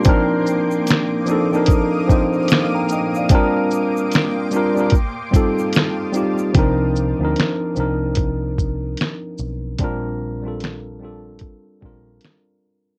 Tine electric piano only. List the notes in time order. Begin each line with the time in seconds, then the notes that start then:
0.04 F3 C4 D4 D#4
0.09 A#4
1.26 F3 C4 D4 D#4
1.31 A4
1.51 F3 C4 D4 D#4
1.56 A#4
2.07 F3 C4 D4 D#4
2.12 C5
2.75 G5 A#5
2.92 D#5 G5
3.17 D5 F5
3.29 G3 C4 D4
3.34 F4 A#4
4.51 G3 C4 D4 F4
4.56 A#4
4.75 G3 C4 D4
4.79 F4 A#4
5.31 G3 C4 D#4
5.35 F4 A4
6.12 G3 C4 D#4
6.16 F4 G4
6.54 F3 C4 D4 D#4
6.59 A#4
7.20 F3 C4 D4 D#4
7.25 A#4
7.75 F3 C4 D4
7.79 D#4 A#4
9.79 G3 C4 D4
9.83 F4 A#4
10.42 G3 C4 D4 F4
10.48 A4
10.99 G3 C4 D4
11.03 F4 A4
11.81 G3 C4 D4
11.85 F4 A#4